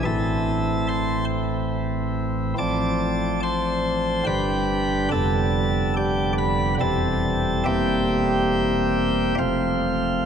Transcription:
<<
  \new Staff \with { instrumentName = "Pipe organ" } { \time 3/4 \key a \minor \tempo 4 = 71 <a' e'' a''>4 <c'' a'' c'''>8 r4. | \key c \major <d'' a'' d'''>4 <c'' a'' c'''>4 <b' g'' b''>4 | <a' a''>4 <g' d'' g''>8 <b' b''>8 <a' a''>4 | <g' e'' g''>2 <f' c'' f''>4 | }
  \new Staff \with { instrumentName = "Pipe organ" } { \clef bass \time 3/4 \key a \minor <a,, a, e c' e'>2. | \key c \major <a,, a, f c'>2 <g,, g, d g d'>4 | <f,, f, d g b>2 <e,, e, e g c'>4 | <e,, e, g bes c'>2 <f,, f, a c'>4 | }
>>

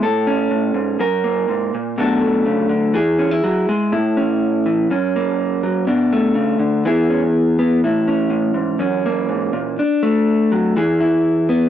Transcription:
\new Staff \with { instrumentName = "Clean electric guitar" } { \time 4/4 \key a \major \tempo 4 = 123 << { a'8 cis'4. ais'8 ais4. | <fis a d' a'>8 a4. gis'8 cis'16 e'4~ e'16 | e'8 cis'4. cis'8 ais4. | d'8 a4. <b e' gis'>8 cis'16 r4 r16 |
e'8 cis'4. cis'8 ais4. | d'8 a4. gis'8 e'4. | } \\ { a,4 a,8 gis,8 fis,4 gis,8 ais,8 | b,4 cis8 d8 e4 fis8 gis8 | a,4. e8 fis,4. fis8 | b,4 cis8 d8 e4. b8 |
a,4 a,8 gis,8 fis,4 gis,8 ais,8 | r4. fis8 e4. b8 | } >> }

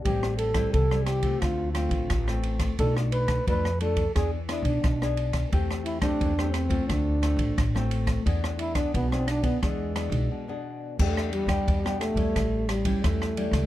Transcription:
<<
  \new Staff \with { instrumentName = "Trombone" } { \time 4/4 \key e \phrygian \tempo 4 = 88 g'8 a'8 a'8 g'8 f'8 f'4 r8 | a'8 b'8 b'8 a'8 gis'8 e'16 d'8. r8 | r8 e'16 d'8. c'8 d'4. r8 | r8 e'16 d'16 b16 c'16 d'16 b16 gis4. r8 |
\key e \minor a8 g4 a4 g8 a4 | }
  \new Staff \with { instrumentName = "Nylon-string guitar" } { \time 4/4 \key e \phrygian << { <g c' e'>8. <g c' e'>8 <g c' e'>8 <a c' f'>8. <a c' f'>8 r16 <a c' f'>8. | <a d' f'>4 <a d' f'>16 r16 <a d' f'>16 r16 <b d' gis'>16 r16 <b d' gis'>8 r16 <b d' gis'>8. | <a c' g'>8. <a c' g'>8 <a c' g'>8 <a c' f'>8. <a c' f'>8 r16 <a c' f'>8. | <b d' gis'>8. <b d' gis'>8 <b d' gis'>8 <b d' gis'>16 <b d' gis'>8 <b d' gis'>8. <b d' gis'>8. |
\key e \minor <b d' g'>8. <b d' g'>8 <b d' g'>8 <g cis' e'>4 <g cis' e'>8. <g cis' e'>8 | } \\ { a,4 e4 d4 a,4 | b,4 b,4 e4 b,4 | e4 e4 d4 a,4 | e4 b,4 e4 b,4 |
e4 b,4 a,4 e4 | } >> }
  \new Staff \with { instrumentName = "Upright bass" } { \clef bass \time 4/4 \key e \phrygian a,,4 c,4 d,8. a,,16 a,,4 | b,,4 f,4 e,8. b,,16 b,,4 | e,4 e,4 d,8. a,,16 a,,4 | e,4 b,,4 e,8. b,,16 r4 |
\key e \minor e,8. e,16 e,8. e,16 a,,4 e,8. cis,16 | }
  \new DrumStaff \with { instrumentName = "Drums" } \drummode { \time 4/4 <bd cymr>16 ss16 cymr16 <bd cymr ss>16 <bd cymr>16 ss16 <cymr ss>16 <bd cymr>16 <bd cymr ss>8 <cymr ss>16 <bd cymr>16 <bd cymr ss>16 ss16 cymr16 <bd cymr ss>16 | <bd cymr>16 ss16 cymr16 <bd cymr ss>16 <bd cymr>16 ss16 cymr16 <bd cymr>16 <bd cymr ss>8 <cymr ss>16 <bd cymr>16 <bd cymr ss>16 ss16 cymr16 <bd cymr ss>16 | <bd cymr>16 ss16 cymr16 <bd cymr ss>16 <bd cymr>16 ss16 <cymr ss>16 <bd cymr>16 <bd cymr ss>8 <cymr ss>16 <bd cymr>16 <bd cymr ss>16 ss16 cymr16 <bd cymr ss>16 | <bd cymr>16 ss16 cymr16 <bd cymr ss>16 <bd cymr>16 ss16 <cymr ss>16 <bd cymr>16 <bd cymr ss>8 <cymr ss>16 <bd cymr>16 r4 |
<cymc bd>16 ss16 cymr16 <bd cymr ss>16 <bd cymr>16 ss16 <cymr ss>16 <bd cymr>16 <bd cymr ss>8 <cymr ss>16 <bd cymr>16 <bd cymr ss>16 ss16 cymr16 <bd cymr ss>16 | }
>>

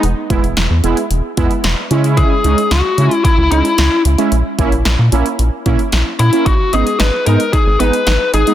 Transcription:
<<
  \new Staff \with { instrumentName = "Lead electric guitar" } { \time 4/4 \key gis \minor \tempo 4 = 112 r1 | gis'4 fis'4 e'8 e'4 r8 | r2. r8 e'8 | fis'8 gis'8 b'8 ais'8 gis'8 b'4 gis'8 | }
  \new Staff \with { instrumentName = "Synth arpeggio sound" } { \time 4/4 \key gis \minor r1 | r1 | r1 | dis'8 cis'8 dis'8 dis'8 dis'8 b8 dis'8 dis'8 | }
  \new Staff \with { instrumentName = "Analog polysynth" } { \time 4/4 \key gis \minor r8 <gis b e'>16 r8. <gis b e'>16 r8. <gis b e'>16 r8. <gis cis' e'>8~ | <gis cis' e'>16 r16 <gis cis' dis'>16 r8. <gis cis' e'>16 r8. <gis cis' dis'>16 r8. <cis' e'>16 <gis cis' e'>16 | r8 <ais cis' e'>16 r8. <ais cis' e'>16 r8. <ais cis' e'>16 r8. <cis' e'>16 <ais cis' e'>16 | r8 <gis b dis'>16 r8. <gis b dis'>16 r8. <gis b dis'>16 r8. <b dis'>16 <gis b dis'>16 | }
  \new Staff \with { instrumentName = "Analog synth bass" } { \clef bass \time 4/4 \key gis \minor e,,16 r16 e,,16 e,,16 e,,16 e,16 e,,16 r16 e,,16 r16 e,16 r16 e,,16 r16 cis8~ | cis16 r16 cis,16 r16 cis,16 r16 cis16 r8 cis,16 cis,16 r16 cis,16 r16 cis,16 r16 | ais,,16 r16 ais,,16 ais,,16 ais,,16 ais,16 ais,,16 r16 ais,,16 r16 ais,16 r16 ais,,16 r16 ais,16 r16 | gis,,16 r16 gis,,16 r16 gis,,16 r16 gis,16 r8 gis,,16 gis,,16 r16 gis,,16 r16 gis,,16 r16 | }
  \new DrumStaff \with { instrumentName = "Drums" } \drummode { \time 4/4 hh8 <hh bd>16 hh16 <hh sn>8 hh16 hh16 hh8 <hh bd>16 hh16 <hh sn>8 hh16 hh16 | <hh bd>8 hh16 hh16 <hh sn>8 hh16 hh16 <hh bd>8 hh16 hh16 <hh sn>8 hh16 hh16 | hh8 <hh bd>16 hh16 <hh sn>8 hh16 hh16 hh8 <hh bd>16 hh16 <hh sn>8 hh16 hh16 | <hh bd>8 hh16 hh16 <hh sn>8 hh16 hh16 <hh bd>8 hh16 hh16 <hh sn>8 hh16 hh16 | }
>>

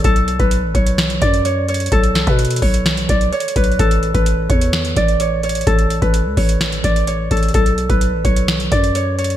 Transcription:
<<
  \new Staff \with { instrumentName = "Harp" } { \time 4/4 \key b \dorian \tempo 4 = 128 a'8. b'16 r8 cis''4 d''8 cis''8 cis''8 | a'8. b'16 r8 cis''4 d''8 cis''8 b'8 | a'8. b'16 r8 cis''4 d''8 cis''8 cis''8 | a'8. b'16 r8 cis''4 d''8 cis''8 a'8 |
a'8. b'16 r8 cis''4 d''8 cis''8 cis''8 | }
  \new Staff \with { instrumentName = "808-style bass" } { \clef bass \time 4/4 \key b \dorian b,,8. b,,8 a,,16 b,,4 fis,4. | b,,8. b,8. b,,4 b,,8 r8 b,,8 | a,,8. a,,8. e,4 a,,4. | a,,8. a,,8 cis,16 a,,4 a,,4 a,,8 |
b,,8. b,,8 a,,16 b,,4 fis,4. | }
  \new DrumStaff \with { instrumentName = "Drums" } \drummode { \time 4/4 <hh bd>16 hh16 hh16 <hh bd>16 hh8 <hh bd>16 hh16 <hh sn>16 hh16 <hh bd>16 hh16 hh8 hh32 hh32 hh32 hh32 | <hh bd>16 hh16 <hh sn>16 <hh bd>16 hh32 hh32 hh32 hh32 <hho bd>16 hh16 <hh sn>16 hh16 <hh bd>16 hh16 \tuplet 3/2 { hh16 hh16 hh16 <hh bd>16 hh16 hh16 } | <hh bd>16 hh16 hh16 <hh bd>16 hh8 <hh bd>16 hh16 <hh sn>16 hh16 <hh bd>16 hh16 hh8 hh32 hh32 hh32 hh32 | <hh bd>16 hh16 hh16 <hh bd>16 hh8 <hho bd>16 hh16 <hh sn>16 hh16 <hh bd>16 hh16 hh8 <hh bd>32 hh32 hh32 hh32 |
<hh bd>16 hh16 hh16 <hh bd>16 hh8 <hh bd>16 hh16 <hh sn>16 hh16 <hh bd>16 hh16 hh8 hh32 hh32 hh16 | }
>>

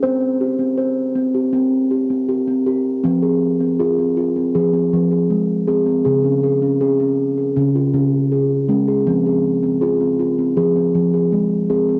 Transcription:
<<
  \new Staff \with { instrumentName = "Steel tongue drum" } { \time 4/4 \key f \minor \tempo 4 = 80 c''16 c'16 g'16 c'16 c''8 c'16 g'16 c'8 g'16 c'16 g'16 c'16 g'8 | c'16 aes'8 c'16 aes'16 c'16 f'16 c'16 aes'16 c'8 aes'16 aes8 aes'16 c'16 | aes'16 des'16 aes'16 des'16 aes'16 des'8 aes'16 des'16 f'16 des'8 aes'8 des'16 aes'16 | c'16 aes'8 c'16 aes'16 c'16 f'16 c'16 aes'16 c'8 aes'16 aes8 aes'16 c'16 | }
  \new Staff \with { instrumentName = "Steel tongue drum" } { \clef bass \time 4/4 \key f \minor c'2 r2 | f4 f'4 f8 f4 c'8 | des4 des'4 des8 des4 aes8 | f4 f'4 f8 f4 c'8 | }
>>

